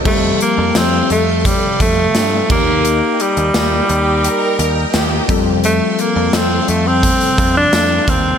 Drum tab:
CC |x-------------x-|----------------|----------------|
HH |--x-x-x-x-x-x---|x-xxx-x-x-x-x-x-|x-x-x-x-xxx-x-x-|
TB |----x-------x---|----x-------x---|----x-------x---|
SD |----o-------o---|----o-------o---|----o-------o---|
BD |o-------o-o---o-|--------------o-|--------o-o---o-|